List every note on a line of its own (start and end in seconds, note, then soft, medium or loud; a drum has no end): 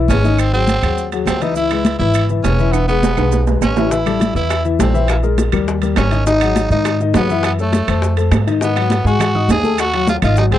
0.08 0.77 G#1 medium
0.08 0.21 G#3 medium
0.08 0.41 C#4 medium
0.08 0.21 G#4 medium
0.08 0.21 B4 medium
0.08 high conga medium
0.08 high timbale medium
0.08 low timbale medium
0.08 maracas medium
0.23 0.48 D#3 medium
0.23 0.48 D#4 medium
0.23 0.48 D#5 medium
0.23 high conga medium
0.23 maracas soft
0.38 0.53 C4 medium
0.38 high conga soft
0.38 high timbale medium
0.38 claves medium
0.38 maracas medium
0.53 0.77 F#3 medium
0.53 1.08 C4 loud
0.53 0.77 F#4 medium
0.53 0.77 G#4 medium
0.53 high conga soft
0.53 maracas soft
0.67 high conga medium
0.67 high timbale medium
0.67 low timbale medium
0.67 maracas medium
0.82 1.23 D#2 medium
0.82 1.06 F#3 medium
0.82 1.07 F#4 medium
0.82 1.07 G#4 medium
0.82 high conga soft
0.82 high timbale medium
0.82 claves medium
0.82 maracas soft
0.97 high conga soft
0.97 maracas medium
1.11 1.36 F#3 medium
1.11 1.37 F#4 medium
1.11 1.37 G#4 medium
1.11 high conga soft
1.11 high timbale medium
1.11 maracas soft
1.26 1.94 C#2 medium
1.26 1.44 C4 medium
1.26 high conga medium
1.26 high timbale medium
1.26 low timbale medium
1.26 claves medium
1.26 maracas medium
1.42 1.54 E3 medium
1.42 1.56 D#4 medium
1.42 1.54 E4 medium
1.42 1.54 E5 medium
1.42 high timbale medium
1.42 maracas soft
1.55 1.68 E3 medium
1.55 1.68 E4 medium
1.55 1.97 E4 medium
1.55 1.68 E5 medium
1.55 high conga soft
1.55 maracas medium
1.70 1.95 G#3 medium
1.70 1.95 G#4 medium
1.70 1.96 B4 medium
1.70 high conga soft
1.70 high timbale medium
1.70 claves medium
1.70 maracas soft
1.85 high conga medium
1.85 high timbale medium
1.85 low timbale medium
1.85 maracas medium
1.99 2.41 G#1 medium
1.99 2.24 E3 medium
1.99 2.27 E4 medium
1.99 2.24 E4 medium
1.99 2.25 E5 medium
1.99 maracas soft
2.14 high conga soft
2.14 high timbale medium
2.14 claves medium
2.14 maracas medium
2.29 2.42 E3 medium
2.29 2.42 E4 medium
2.29 2.42 E5 medium
2.29 high conga soft
2.29 maracas soft
2.43 3.12 E1 medium
2.43 2.56 G#3 medium
2.43 2.74 C#4 medium
2.43 2.56 G#4 medium
2.43 2.57 B4 medium
2.43 high conga medium
2.43 high timbale medium
2.43 low timbale medium
2.43 maracas medium
2.59 2.83 E3 medium
2.59 2.83 E4 medium
2.59 2.84 E5 medium
2.59 maracas soft
2.72 2.88 B3 medium
2.72 high conga soft
2.72 high timbale medium
2.72 claves medium
2.72 maracas medium
2.88 3.13 G#3 medium
2.88 3.43 B3 medium
2.88 3.13 G#4 medium
2.88 3.13 B4 medium
2.88 high conga soft
2.88 maracas soft
3.03 high conga medium
3.03 low timbale medium
3.03 maracas medium
3.17 3.59 B1 medium
3.17 3.42 G#3 medium
3.17 3.42 G#4 medium
3.17 3.42 B4 medium
3.17 high conga soft
3.17 high timbale medium
3.17 claves medium
3.17 maracas soft
3.32 high conga soft
3.32 low timbale medium
3.32 maracas medium
3.47 3.71 G#3 medium
3.47 3.71 G#4 medium
3.47 3.72 B4 medium
3.47 high conga soft
3.47 low timbale medium
3.47 maracas soft
3.61 4.30 A1 medium
3.61 3.93 C#4 medium
3.61 high conga medium
3.61 low timbale medium
3.61 claves medium
3.61 maracas medium
3.76 3.89 E3 medium
3.76 3.89 E4 medium
3.76 3.89 E5 medium
3.76 low timbale medium
3.76 maracas soft
3.91 4.03 E3 medium
3.91 4.35 E4 medium
3.91 4.04 E4 medium
3.91 4.04 E5 medium
3.91 high bongo medium
3.91 high conga soft
3.91 maracas medium
4.06 4.30 G3 medium
4.06 4.30 G4 medium
4.06 4.30 A4 medium
4.06 high bongo soft
4.06 high conga soft
4.06 high timbale medium
4.06 claves medium
4.06 maracas soft
4.20 high bongo medium
4.20 high conga medium
4.20 high timbale medium
4.20 low timbale medium
4.20 maracas medium
4.34 4.76 E2 medium
4.34 4.60 E3 medium
4.34 4.63 E4 medium
4.34 4.60 E4 medium
4.34 4.60 E5 medium
4.34 maracas soft
4.50 high bongo medium
4.50 high conga soft
4.50 high timbale medium
4.50 claves medium
4.50 maracas medium
4.65 4.77 E3 medium
4.65 4.77 E4 medium
4.65 4.77 E5 medium
4.65 high bongo soft
4.65 high conga soft
4.65 maracas soft
4.79 5.48 A#1 medium
4.79 4.91 G3 medium
4.79 5.07 C4 medium
4.79 4.91 G4 medium
4.79 4.91 A4 medium
4.79 high bongo medium
4.79 low bongo medium
4.79 high conga medium
4.79 high timbale medium
4.79 low timbale medium
4.79 maracas medium
4.94 5.18 E3 medium
4.94 5.18 E4 medium
4.94 5.18 E5 medium
4.94 maracas soft
5.08 5.16 A#3 medium
5.08 high bongo medium
5.08 high conga soft
5.08 high timbale medium
5.08 claves medium
5.08 maracas medium
5.23 5.47 G#3 medium
5.23 5.48 G#4 medium
5.23 5.48 A#4 medium
5.23 high bongo soft
5.23 high conga soft
5.23 maracas soft
5.38 high bongo medium
5.38 high conga medium
5.38 high timbale medium
5.38 low timbale medium
5.38 maracas medium
5.52 5.94 D#2 medium
5.52 5.77 G3 medium
5.52 5.77 G4 medium
5.52 5.77 A#4 medium
5.52 high bongo soft
5.52 high timbale medium
5.52 claves medium
5.52 maracas soft
5.68 high bongo medium
5.68 high conga soft
5.68 maracas medium
5.82 6.07 G3 medium
5.82 6.07 G4 medium
5.82 6.07 A#4 medium
5.82 high bongo soft
5.82 high conga soft
5.82 high timbale medium
5.82 maracas soft
5.96 6.65 G#1 medium
5.96 6.25 C#4 medium
5.96 high bongo medium
5.96 low bongo medium
5.96 high conga medium
5.96 high timbale medium
5.96 low timbale medium
5.96 claves medium
5.96 maracas medium
6.11 6.24 D#3 medium
6.11 6.24 D#4 medium
6.11 6.24 D#5 medium
6.11 high timbale medium
6.11 maracas soft
6.26 6.39 D#3 medium
6.26 6.68 D#4 loud
6.26 6.39 D#4 medium
6.26 6.39 D#5 medium
6.26 high bongo medium
6.26 high conga soft
6.26 maracas medium
6.41 6.66 F#3 medium
6.41 6.66 F#4 medium
6.41 6.66 G#4 medium
6.41 high conga soft
6.41 high timbale medium
6.41 claves medium
6.41 maracas soft
6.56 high bongo medium
6.56 high conga medium
6.56 high timbale medium
6.56 low timbale medium
6.56 maracas medium
6.70 7.12 G#2 medium
6.70 6.95 D#3 medium
6.70 6.99 D#4 medium
6.70 6.96 D#4 medium
6.70 6.96 D#5 medium
6.70 maracas soft
6.85 high bongo medium
6.85 high conga soft
6.85 high timbale medium
6.85 claves medium
6.85 maracas medium
7.00 7.13 D#3 medium
7.00 7.13 D#4 medium
7.00 7.13 D#5 medium
7.00 high bongo soft
7.00 high conga soft
7.00 maracas soft
7.14 7.83 F#2 medium
7.14 7.28 F#3 medium
7.14 7.43 B3 medium
7.14 7.28 F#4 medium
7.14 7.28 G#4 medium
7.14 high bongo medium
7.14 low bongo medium
7.14 high conga medium
7.14 high timbale medium
7.14 low timbale medium
7.14 maracas medium
7.29 7.54 E3 medium
7.29 7.54 E4 medium
7.29 7.54 E5 medium
7.29 high bongo soft
7.29 maracas soft
7.43 7.52 B3 medium
7.43 high bongo medium
7.43 high conga soft
7.43 high timbale medium
7.43 claves medium
7.43 maracas medium
7.59 7.84 A3 medium
7.59 8.15 A3 medium
7.59 7.84 A4 medium
7.59 7.84 C#5 medium
7.59 high bongo soft
7.59 high conga soft
7.59 maracas soft
7.73 high bongo medium
7.73 high conga medium
7.73 high timbale medium
7.73 low timbale medium
7.73 maracas medium
7.87 8.29 F2 loud
7.87 8.12 A3 medium
7.87 8.13 A4 medium
7.87 8.13 C5 medium
7.87 high bongo soft
7.87 high conga soft
7.87 high timbale medium
7.87 claves medium
7.87 maracas soft
8.02 high bongo medium
8.02 high conga soft
8.02 maracas medium
8.16 8.42 A3 medium
8.16 8.42 A4 medium
8.16 8.42 C5 medium
8.16 high bongo soft
8.16 high conga soft
8.16 high timbale medium
8.16 maracas soft
8.31 9.00 G#2 medium
8.31 high bongo medium
8.31 low bongo medium
8.31 high conga medium
8.31 high timbale medium
8.31 low timbale medium
8.31 claves medium
8.31 maracas medium
8.47 8.59 D#3 medium
8.47 8.59 D#4 medium
8.47 8.59 D#5 medium
8.47 high timbale medium
8.47 maracas soft
8.61 8.73 D#3 medium
8.61 9.04 B3 medium
8.61 8.74 D#4 medium
8.61 8.74 D#5 medium
8.61 high bongo medium
8.61 high conga soft
8.61 maracas medium
8.75 9.00 F#3 medium
8.75 9.00 F#4 medium
8.75 9.00 F#5 medium
8.75 high bongo soft
8.75 high conga soft
8.75 high timbale medium
8.75 claves medium
8.90 high bongo medium
8.90 high conga medium
8.90 high timbale medium
8.90 low timbale medium
8.90 maracas medium
9.05 9.46 G#2 medium
9.05 9.29 G#3 medium
9.05 9.47 F#4 medium
9.05 9.30 G#4 medium
9.05 9.30 G#5 medium
9.05 high bongo soft
9.05 high conga soft
9.05 maracas soft
9.20 high bongo medium
9.20 high conga soft
9.20 low conga medium
9.20 high timbale medium
9.20 claves medium
9.20 maracas medium
9.35 9.59 D#4 medium
9.35 9.59 D#5 medium
9.35 9.59 D#6 medium
9.35 high bongo soft
9.35 high conga soft
9.35 low conga medium
9.48 10.17 D#2 medium
9.48 9.81 G#4 loud
9.48 high bongo soft
9.48 low bongo medium
9.48 high conga medium
9.48 high timbale medium
9.48 low timbale medium
9.48 maracas medium
9.64 9.88 A3 medium
9.64 9.89 A4 medium
9.64 9.89 A5 medium
9.64 high conga medium
9.64 maracas soft
9.78 10.09 F#4 loud
9.78 high bongo medium
9.78 high conga soft
9.78 high timbale medium
9.78 claves medium
9.78 maracas medium
9.94 10.18 F#3 medium
9.94 10.18 F#4 medium
9.94 10.18 F#5 medium
9.94 high bongo soft
9.94 high conga soft
9.94 high timbale medium
10.07 10.16 F4 medium
10.07 high bongo medium
10.07 high conga loud
10.07 low timbale medium
10.07 maracas medium
10.22 10.50 G#1 loud
10.22 10.35 D#3 medium
10.22 10.35 D#4 medium
10.22 10.37 F4 medium
10.22 10.35 D#5 loud
10.22 high bongo soft
10.22 high conga soft
10.22 high timbale loud
10.22 claves medium
10.22 maracas soft
10.36 10.49 F#3 medium
10.36 10.45 D#4 medium
10.36 10.49 F#4 medium
10.36 10.49 F#5 medium
10.36 high bongo medium
10.36 high conga soft
10.36 maracas medium
10.51 10.59 C2 medium
10.51 10.59 G#3 medium
10.51 10.59 C4 medium
10.51 10.59 G#4 medium
10.51 10.59 G#5 medium
10.51 high bongo soft
10.51 high conga soft
10.51 high timbale medium